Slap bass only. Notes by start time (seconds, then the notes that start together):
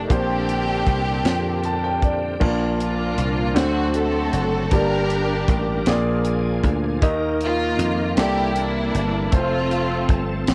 0.10 A#1
0.87 C2
1.25 F2
2.41 A#1
3.18 C2
3.56 D2
4.33 F#1
4.72 G1
5.48 A1
5.87 A#1
6.64 D2
7.02 D#2
7.79 F2
8.17 C2
8.95 G1
9.33 F1
10.09 G1
10.48 A1